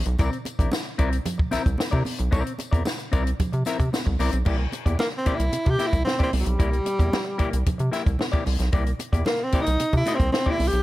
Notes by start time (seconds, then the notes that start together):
0.05 B1, muted clean electric guitar stroke, closed hi-hat
0.18 C2 C4 E4 A#4 D5, kick, closed hi-hat, tambourine, muted conga
0.32 muted clean electric guitar stroke, closed hi-hat
0.45 muted clean electric guitar stroke, closed hi-hat, tambourine, muted conga
0.59 A#1 C4 E4 A#4 D5, kick, closed hi-hat
0.71 muted clean electric guitar stroke, snare, tambourine, high conga
0.85 muted clean electric guitar stroke
0.98 C2 C4 E4 A#4 D5, kick, closed hi-hat
1.12 muted clean electric guitar stroke, closed hi-hat
1.26 closed hi-hat, tambourine, muted conga, low conga
1.38 muted clean electric guitar stroke, kick
1.51 C2 C4 E4 A#4 E5, snare, closed hi-hat, tambourine, muted conga
1.65 C2, muted clean electric guitar stroke, kick, closed hi-hat
1.78 muted clean electric guitar stroke, snare, tambourine, high conga
1.91 C3 C4 E4 A#4 D5, kick, closed hi-hat, high conga
2.05 muted clean electric guitar stroke, open hi-hat, tambourine, high conga
2.19 B1, muted clean electric guitar stroke, closed hi-hat
2.31 C2 C4 E4 A#4 D5, kick, closed hi-hat, tambourine, muted conga
2.46 muted clean electric guitar stroke, closed hi-hat
2.59 muted clean electric guitar stroke, closed hi-hat, tambourine, muted conga
2.71 E2 C4 E4 A#4 D5, kick, closed hi-hat
2.85 muted clean electric guitar stroke, snare, tambourine, high conga
2.98 muted clean electric guitar stroke, closed hi-hat
3.12 C2 C4 E4 A#4 D5, kick, closed hi-hat, tambourine
3.25 muted clean electric guitar stroke, closed hi-hat
3.40 kick, closed hi-hat, tambourine, muted conga, low conga
3.53 C3, muted clean electric guitar stroke, closed hi-hat
3.65 C4 E4 A#4 E5, snare, closed hi-hat, tambourine, muted conga
3.79 C3, muted clean electric guitar stroke, kick, closed hi-hat
3.92 muted clean electric guitar stroke, snare, tambourine, high conga
4.06 C2, muted clean electric guitar stroke, kick, high conga
4.19 C2 C4 E4 A#4 D5, open hi-hat, tambourine, high conga
4.33 B1, muted clean electric guitar stroke, closed hi-hat
4.45 C2 A#3 E4 G4 D5, kick, crash, muted conga
4.59 muted clean electric guitar stroke
4.72 muted clean electric guitar stroke, closed hi-hat, muted conga
4.86 E2 A#3 E4 G4 D5, kick, closed hi-hat
4.99 A#3, muted clean electric guitar stroke, snare, high conga
5.12 muted clean electric guitar stroke
5.17 C4
5.25 C2 A#3 E4 G4 D5, kick, closed hi-hat
5.35 E4
5.39 C2, muted clean electric guitar stroke, closed hi-hat
5.53 C3, closed hi-hat, muted conga
5.65 C3, muted clean electric guitar stroke, kick, closed hi-hat
5.70 G4
5.78 A#3 E4 G4 E5, snare, closed hi-hat, muted conga
5.87 E4
5.92 C2, muted clean electric guitar stroke, kick, closed hi-hat
6.05 C4, muted clean electric guitar stroke, snare, high conga
6.19 A#3 E4 G4 D5, kick, closed hi-hat
6.23 C4
6.33 C2, muted clean electric guitar stroke, open hi-hat, high conga
6.41 G3
6.45 B1, muted clean electric guitar stroke, closed hi-hat
6.59 C2 A#3 E4 G4 D5, kick, closed hi-hat, muted conga
6.72 muted clean electric guitar stroke, closed hi-hat
6.85 muted clean electric guitar stroke, closed hi-hat, muted conga
6.99 E2 A#3 E4 G4 D5, kick, closed hi-hat
7.12 muted clean electric guitar stroke, snare, high conga
7.25 muted clean electric guitar stroke
7.38 C2 A#3 E4 G4 D5, kick, closed hi-hat
7.51 C2, muted clean electric guitar stroke, closed hi-hat
7.66 C3, kick, closed hi-hat, muted conga, low conga
7.78 C3, muted clean electric guitar stroke, closed hi-hat
7.91 A#3 E4 G4 E5, snare, closed hi-hat, muted conga
8.05 C2, muted clean electric guitar stroke, kick, closed hi-hat
8.19 muted clean electric guitar stroke, snare, high conga
8.32 A#3 E4 G4 D5, kick, closed hi-hat
8.46 C2, muted clean electric guitar stroke, open hi-hat, high conga
8.59 B1, muted clean electric guitar stroke, snare, closed hi-hat
8.73 C2 A#3 E4 G4 D5, kick, closed hi-hat, muted conga
8.86 muted clean electric guitar stroke, closed hi-hat
8.99 muted clean electric guitar stroke, closed hi-hat, muted conga
9.13 E2 A#3 E4 G4 D5, kick, closed hi-hat
9.26 A#3, muted clean electric guitar stroke, snare, high conga
9.40 C4, muted clean electric guitar stroke
9.52 C2 A#3 E4 G4 D5, kick, closed hi-hat
9.61 D#4
9.66 C2, muted clean electric guitar stroke, closed hi-hat
9.80 C3, closed hi-hat, muted conga
9.93 C3, muted clean electric guitar stroke, kick, closed hi-hat
9.97 E4
10.06 A#3 E4 G4 E5, snare, closed hi-hat, muted conga
10.14 C4
10.20 C2, muted clean electric guitar stroke, kick, closed hi-hat
10.32 C4, muted clean electric guitar stroke, snare, high conga
10.46 A#3 E4 G4 D5, kick
10.50 E4
10.59 C2, muted clean electric guitar stroke, open hi-hat, high conga
10.67 G4
10.73 B1, muted clean electric guitar stroke, closed hi-hat